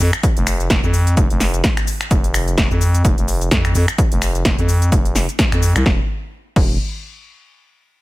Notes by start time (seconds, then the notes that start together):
0.00 F2, open hi-hat, shaker
0.13 finger snap, closed hi-hat, shaker
0.23 kick, closed hi-hat, shaker
0.37 F1, closed hi-hat, shaker
0.47 finger snap, open hi-hat, shaker
0.60 closed hi-hat, shaker
0.70 F1, kick, snare, closed hi-hat, shaker
0.84 F2, shaker
0.94 open hi-hat, shaker
1.07 closed hi-hat, shaker
1.17 F1, kick, closed hi-hat, shaker
1.30 F1, closed hi-hat, shaker
1.40 snare, open hi-hat, shaker
1.54 closed hi-hat, shaker
1.64 kick, snare, closed hi-hat, shaker
1.77 finger snap, closed hi-hat, shaker
1.87 open hi-hat, shaker
2.01 finger snap, closed hi-hat, shaker
2.11 F1, kick, closed hi-hat, shaker
2.24 closed hi-hat, shaker
2.34 finger snap, open hi-hat, shaker
2.48 closed hi-hat, shaker
2.58 F1, kick, snare, closed hi-hat, shaker
2.71 F2, shaker
2.81 open hi-hat, shaker
2.94 closed hi-hat, shaker
3.05 F1, kick, closed hi-hat, shaker
3.18 F1, closed hi-hat, shaker
3.28 open hi-hat, shaker
3.41 closed hi-hat, shaker
3.51 F2, kick, snare, closed hi-hat, shaker
3.65 finger snap, closed hi-hat, shaker
3.75 F2, open hi-hat, shaker
3.88 finger snap, closed hi-hat, shaker
3.98 kick, closed hi-hat, shaker
4.12 F1, closed hi-hat, shaker
4.22 finger snap, open hi-hat, shaker
4.35 closed hi-hat, shaker
4.45 F1, kick, snare, closed hi-hat, shaker
4.58 F2, closed hi-hat, shaker
4.69 open hi-hat, shaker
4.82 closed hi-hat, shaker
4.92 F1, kick, closed hi-hat, shaker
5.05 closed hi-hat, shaker
5.15 snare, open hi-hat, shaker
5.29 closed hi-hat, shaker
5.39 kick, snare, closed hi-hat, shaker
5.52 F2, finger snap, closed hi-hat, shaker
5.62 open hi-hat, shaker
5.76 C2, finger snap, closed hi-hat, shaker
5.86 E1, kick, snare
6.56 E1, kick, crash